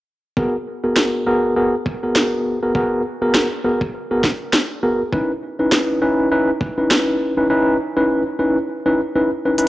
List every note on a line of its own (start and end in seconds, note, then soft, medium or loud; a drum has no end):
0.37 0.55 B3 medium
0.37 0.55 F#4 medium
0.37 0.55 G#4 medium
0.37 0.55 A#4 medium
0.37 kick loud
0.84 1.23 B3 medium
0.84 1.23 F#4 medium
0.84 1.23 G#4 medium
0.84 1.23 A#4 medium
0.96 snare loud
1.27 1.53 B3 medium
1.27 1.53 F#4 medium
1.27 1.53 G#4 medium
1.27 1.53 A#4 medium
1.56 1.74 B3 medium
1.56 1.74 F#4 medium
1.56 1.74 G#4 medium
1.56 1.74 A#4 medium
1.86 kick loud
2.03 2.58 B3 medium
2.03 2.58 F#4 medium
2.03 2.58 G#4 medium
2.03 2.58 A#4 medium
2.15 snare loud
2.63 2.72 B3 medium
2.63 2.72 F#4 medium
2.63 2.72 G#4 medium
2.63 2.72 A#4 medium
2.75 3.01 B3 medium
2.75 3.01 F#4 medium
2.75 3.01 G#4 medium
2.75 3.01 A#4 medium
2.75 kick loud
3.22 3.47 B3 medium
3.22 3.47 F#4 medium
3.22 3.47 G#4 medium
3.22 3.47 A#4 medium
3.34 snare loud
3.64 3.82 B3 medium
3.64 3.82 F#4 medium
3.64 3.82 G#4 medium
3.64 3.82 A#4 medium
3.81 kick loud
4.11 4.25 B3 medium
4.11 4.25 F#4 medium
4.11 4.25 G#4 medium
4.11 4.25 A#4 medium
4.23 kick loud
4.23 snare medium
4.53 snare loud
4.83 5.01 B3 medium
4.83 5.01 F#4 medium
4.83 5.01 G#4 medium
4.83 5.01 A#4 medium
5.13 5.31 C#4 medium
5.13 5.31 D#4 medium
5.13 5.31 E4 medium
5.13 5.31 B4 medium
5.13 kick loud
5.59 5.99 C#4 medium
5.59 5.99 D#4 medium
5.59 5.99 E4 medium
5.59 5.99 B4 medium
5.72 snare loud
6.02 6.28 C#4 medium
6.02 6.28 D#4 medium
6.02 6.28 E4 medium
6.02 6.28 B4 medium
6.31 6.49 C#4 medium
6.31 6.49 D#4 medium
6.31 6.49 E4 medium
6.31 6.49 B4 medium
6.61 kick loud
6.78 7.33 C#4 medium
6.78 7.33 D#4 medium
6.78 7.33 E4 medium
6.78 7.33 B4 medium
6.91 snare loud
7.37 7.47 C#4 medium
7.37 7.47 D#4 medium
7.37 7.47 E4 medium
7.37 7.47 B4 medium
7.50 7.76 C#4 medium
7.50 7.76 D#4 medium
7.50 7.76 E4 medium
7.50 7.76 B4 loud
7.97 8.22 C#4 medium
7.97 8.22 D#4 medium
7.97 8.22 E4 medium
7.97 8.22 B4 medium
8.39 8.57 C#4 medium
8.39 8.57 D#4 medium
8.39 8.57 E4 medium
8.39 8.57 B4 medium
8.86 9.00 C#4 medium
8.86 9.00 D#4 medium
8.86 9.00 E4 medium
8.86 9.00 B4 medium
9.16 9.30 C#4 medium
9.16 9.30 D#4 medium
9.16 9.30 E4 medium
9.16 9.30 B4 medium
9.45 9.55 C#4 medium
9.45 9.55 D#4 medium
9.45 9.55 E4 medium
9.45 9.55 B4 medium
9.58 9.68 C#4 medium
9.58 9.68 D#4 medium
9.58 9.68 E4 medium
9.58 9.68 B4 medium
9.58 closed hi-hat medium